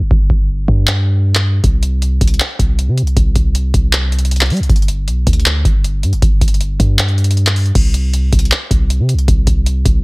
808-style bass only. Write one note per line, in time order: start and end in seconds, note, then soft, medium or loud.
0.01 0.10 G1 loud
0.11 0.29 G1 loud
0.30 0.67 G1 loud
0.68 1.60 G2 loud
1.64 2.19 C2 loud
2.21 2.39 C2 loud
2.59 2.89 C2 loud
2.88 3.04 C3 loud
3.02 3.16 C2 loud
3.17 3.35 C2 loud
3.36 3.72 C2 loud
3.74 4.52 C2 loud
4.50 4.61 G3 loud
4.60 4.69 C2 loud
4.70 5.09 G1 loud
5.08 5.26 B1 loud
5.27 5.63 D2 loud
5.65 6.05 G1 loud
6.03 6.14 G2 loud
6.13 6.22 G1 loud
6.22 6.41 G1 loud
6.41 6.78 G1 loud
6.80 7.71 G2 loud
7.75 8.30 C2 loud
8.33 8.51 C2 loud
8.71 9.01 C2 loud
8.99 9.15 C3 loud
9.14 9.27 C2 loud
9.28 9.46 C2 loud
9.47 9.84 C2 loud
9.85 10.04 C2 loud